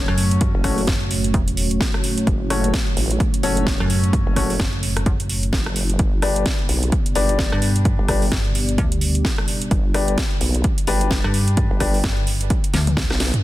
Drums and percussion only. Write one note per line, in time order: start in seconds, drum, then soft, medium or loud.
0.08 cross-stick medium
0.18 open hi-hat loud
0.31 closed hi-hat medium
0.41 kick loud
0.41 closed hi-hat medium
0.64 kick medium
0.64 cross-stick medium
0.64 open hi-hat loud
0.78 open hi-hat medium
0.87 kick loud
0.87 snare loud
0.87 closed hi-hat medium
1.11 open hi-hat loud
1.24 closed hi-hat medium
1.34 kick loud
1.34 closed hi-hat medium
1.48 closed hi-hat medium
1.57 open hi-hat loud
1.71 closed hi-hat medium
1.81 kick loud
1.81 snare loud
1.94 cross-stick medium
2.04 open hi-hat loud
2.18 closed hi-hat medium
2.27 kick loud
2.27 closed hi-hat medium
2.50 cross-stick medium
2.50 open hi-hat loud
2.64 closed hi-hat medium
2.74 kick loud
2.74 snare loud
2.74 closed hi-hat medium
2.97 open hi-hat loud
3.11 closed hi-hat medium
3.20 kick loud
3.20 closed hi-hat medium
3.34 closed hi-hat medium
3.43 open hi-hat loud
3.57 closed hi-hat medium
3.67 kick loud
3.67 snare loud
3.80 cross-stick medium
3.90 open hi-hat loud
4.04 closed hi-hat medium
4.13 kick loud
4.13 closed hi-hat medium
4.36 kick medium
4.36 cross-stick medium
4.36 open hi-hat loud
4.50 open hi-hat medium
4.60 kick loud
4.60 snare loud
4.83 open hi-hat loud
4.97 cross-stick medium
4.97 closed hi-hat medium
5.06 kick loud
5.06 closed hi-hat medium
5.20 closed hi-hat medium
5.29 open hi-hat loud
5.43 closed hi-hat soft
5.53 kick loud
5.53 snare loud
5.66 cross-stick medium
5.76 open hi-hat loud
5.90 closed hi-hat medium
5.99 kick loud
5.99 closed hi-hat medium
6.22 cross-stick medium
6.22 open hi-hat loud
6.36 closed hi-hat medium
6.46 kick loud
6.46 snare loud
6.46 closed hi-hat medium
6.69 open hi-hat loud
6.83 closed hi-hat medium
6.92 kick loud
6.92 closed hi-hat medium
7.06 closed hi-hat medium
7.15 open hi-hat loud
7.29 closed hi-hat medium
7.39 kick loud
7.39 snare loud
7.52 cross-stick medium
7.62 open hi-hat loud
7.76 closed hi-hat medium
7.85 kick loud
7.85 closed hi-hat medium
8.08 kick medium
8.08 cross-stick medium
8.08 open hi-hat loud
8.22 open hi-hat medium
8.32 kick loud
8.32 snare loud
8.55 open hi-hat loud
8.69 closed hi-hat medium
8.78 kick loud
8.78 closed hi-hat medium
8.92 closed hi-hat medium
9.01 open hi-hat loud
9.15 closed hi-hat medium
9.25 kick loud
9.25 snare loud
9.38 cross-stick medium
9.48 open hi-hat loud
9.62 closed hi-hat medium
9.71 kick loud
9.71 closed hi-hat medium
9.94 cross-stick medium
9.94 open hi-hat loud
10.08 closed hi-hat medium
10.18 kick loud
10.18 snare loud
10.18 closed hi-hat medium
10.41 open hi-hat loud
10.54 closed hi-hat medium
10.64 kick loud
10.64 closed hi-hat medium
10.78 closed hi-hat medium
10.87 open hi-hat loud
11.01 closed hi-hat medium
11.11 kick loud
11.11 snare loud
11.24 cross-stick medium
11.34 open hi-hat loud
11.48 closed hi-hat medium
11.57 kick loud
11.57 closed hi-hat medium
11.80 kick medium
11.80 cross-stick medium
11.80 open hi-hat loud
11.94 open hi-hat medium
12.04 kick loud
12.04 snare loud
12.04 closed hi-hat medium
12.27 open hi-hat loud
12.41 closed hi-hat medium
12.50 kick loud
12.50 closed hi-hat medium
12.64 closed hi-hat medium
12.74 snare medium
12.74 open hi-hat loud
12.74 high tom medium
12.87 closed hi-hat medium
12.87 high tom medium
12.97 kick loud
12.97 snare loud
13.10 cross-stick medium
13.10 snare medium
13.20 snare medium
13.20 open hi-hat loud
13.34 closed hi-hat medium
13.34 mid tom medium